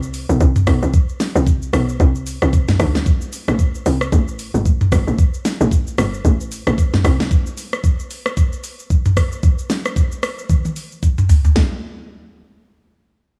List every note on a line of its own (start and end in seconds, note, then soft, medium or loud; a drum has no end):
0.00 0.26 C2 loud
0.00 shaker medium
0.14 open hi-hat medium
0.14 shaker loud
0.29 0.40 B1 medium
0.29 shaker soft
0.41 0.65 C2 medium
0.41 kick loud
0.41 shaker medium
0.56 mid tom loud
0.56 shaker medium
0.67 0.81 B1 loud
0.67 kick medium
0.67 cross-stick loud
0.67 open hi-hat medium
0.67 shaker medium
0.82 0.93 C2 medium
0.82 shaker medium
0.94 kick loud
0.94 shaker medium
1.09 shaker medium
1.20 snare medium
1.20 open hi-hat medium
1.20 shaker loud
1.35 1.70 C2 loud
1.35 shaker medium
1.47 kick loud
1.47 shaker medium
1.62 shaker medium
1.73 1.98 B1 medium
1.73 cross-stick loud
1.73 open hi-hat medium
1.73 shaker medium
1.89 shaker medium
2.00 2.39 C2 loud
2.00 kick loud
2.00 shaker medium
2.15 shaker medium
2.27 open hi-hat medium
2.27 shaker loud
2.42 2.77 C2 medium
2.42 cross-stick medium
2.42 shaker soft
2.53 kick loud
2.53 shaker medium
2.68 snare medium
2.68 mid tom loud
2.68 shaker medium
2.80 3.04 D2 loud
2.80 kick medium
2.80 cross-stick loud
2.80 open hi-hat medium
2.80 shaker medium
2.95 snare medium
2.95 shaker medium
3.06 kick loud
3.06 shaker medium
3.21 shaker medium
3.33 open hi-hat medium
3.33 shaker loud
3.48 3.83 A1 loud
3.48 cross-stick loud
3.48 shaker medium
3.59 kick loud
3.59 shaker medium
3.75 shaker medium
3.86 4.10 C2 loud
3.86 open hi-hat medium
3.86 shaker medium
4.01 cross-stick loud
4.01 shaker soft
4.12 4.51 A1 loud
4.12 kick loud
4.12 shaker medium
4.28 shaker medium
4.39 open hi-hat medium
4.39 shaker loud
4.54 4.67 G1 medium
4.54 shaker soft
4.66 4.90 A1 medium
4.66 kick medium
4.66 shaker medium
4.81 mid tom loud
4.81 shaker medium
4.92 5.06 G1 loud
4.92 kick medium
4.92 cross-stick loud
4.92 open hi-hat medium
4.92 shaker loud
5.07 5.18 A1 medium
5.07 shaker medium
5.19 kick loud
5.19 shaker medium
5.34 shaker medium
5.45 snare medium
5.45 open hi-hat medium
5.45 shaker loud
5.61 5.95 A1 loud
5.61 shaker medium
5.71 kick loud
5.71 shaker medium
5.87 shaker medium
5.98 6.23 G1 medium
5.98 cross-stick loud
5.98 open hi-hat medium
5.98 shaker medium
6.14 shaker soft
6.25 6.64 A1 loud
6.25 kick loud
6.25 shaker medium
6.40 shaker medium
6.52 open hi-hat medium
6.52 shaker loud
6.67 7.02 A1 medium
6.67 cross-stick loud
6.67 shaker soft
6.78 kick medium
6.78 shaker medium
6.93 snare medium
6.93 mid tom loud
6.93 shaker medium
7.04 7.29 C2 loud
7.04 kick medium
7.04 cross-stick loud
7.04 open hi-hat medium
7.04 shaker loud
7.20 snare medium
7.20 shaker medium
7.31 kick loud
7.31 shaker medium
7.46 shaker medium
7.58 open hi-hat medium
7.58 shaker loud
7.73 cross-stick medium
7.73 shaker medium
7.84 kick loud
7.84 shaker medium
7.99 shaker medium
8.11 open hi-hat medium
8.11 shaker medium
8.26 cross-stick loud
8.26 shaker soft
8.37 kick loud
8.37 shaker medium
8.53 shaker medium
8.64 open hi-hat medium
8.64 shaker loud
8.79 shaker soft
8.90 kick medium
8.90 shaker medium
9.06 mid tom loud
9.06 shaker medium
9.17 kick medium
9.17 cross-stick loud
9.17 open hi-hat medium
9.17 shaker loud
9.32 shaker medium
9.43 kick loud
9.43 shaker medium
9.59 shaker medium
9.70 snare medium
9.70 open hi-hat medium
9.70 shaker loud
9.85 cross-stick medium
9.85 shaker medium
9.96 kick medium
9.96 shaker medium
10.12 shaker medium
10.23 cross-stick loud
10.23 open hi-hat medium
10.23 shaker medium
10.38 shaker soft
10.50 kick loud
10.50 high tom medium
10.50 shaker medium
10.65 high tom medium
10.65 shaker medium
10.76 open hi-hat medium
10.76 shaker loud
10.92 shaker soft
11.03 kick loud
11.03 shaker medium
11.18 mid tom medium
11.18 shaker medium
11.29 floor tom loud
11.29 open hi-hat medium
11.29 shaker loud
11.45 floor tom loud
11.45 shaker medium
11.56 kick loud
11.56 snare loud